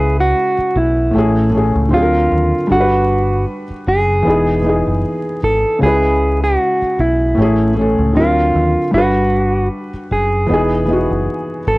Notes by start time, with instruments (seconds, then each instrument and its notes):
Already playing: fingered electric bass C#2, felt piano C#3 G#3 E4 B4, clean electric guitar G#4
0.20 clean electric guitar F#4
0.58 muted fingered electric bass stroke
0.76 fingered electric bass B1, clean electric guitar E4
1.11 fingered electric bass A1, felt piano A2 A3
1.16 felt piano C#4 G#4
1.50 felt piano A2 A3
1.55 felt piano C#4 G#4
1.75 fingered electric bass C#2
1.89 felt piano D3 C4 F4
1.93 fingered electric bass D2, felt piano F#3 G#4, clean electric guitar F4
2.02 felt piano A#4
2.32 fingered electric bass D#2
2.67 fingered electric bass G1, felt piano G3 D4
2.72 felt piano F#4 A4, clean electric guitar F#4
2.80 felt piano B4
3.70 muted fingered electric bass stroke
3.87 fingered electric bass F#1, clean electric guitar G#4
4.23 fingered electric bass E1, felt piano E3 B3
4.28 felt piano D#4 G#4
4.62 felt piano E3 B3
4.66 felt piano D#4 G#4
4.87 fingered electric bass F#1
5.43 fingered electric bass G#1, clean electric guitar A4
5.79 fingered electric bass C#2, felt piano C#3 G#3
5.83 felt piano E4 B4, clean electric guitar G#4
6.44 clean electric guitar F#4
6.82 muted fingered electric bass stroke
6.99 fingered electric bass B1, clean electric guitar E4
7.35 fingered electric bass A1, felt piano A2 A3
7.39 felt piano C#4 G#4
7.74 felt piano A2 A3
7.79 felt piano C#4 A4
7.99 fingered electric bass C#2
8.13 fingered electric bass D2, felt piano D3 C4 F4, clean electric guitar F4
8.18 felt piano F#3 A#4
8.55 fingered electric bass D#2
8.91 fingered electric bass G1, felt piano G3 D4, clean electric guitar F#4
8.95 felt piano F#4 B4
9.94 muted fingered electric bass stroke
10.11 fingered electric bass F#1, clean electric guitar G#4
10.46 fingered electric bass E1, felt piano E3 B3
10.51 felt piano D#4 G#4
10.86 felt piano E3 B3
10.90 felt piano D#4 F#4
11.11 fingered electric bass F#1
11.67 fingered electric bass G#1, clean electric guitar A4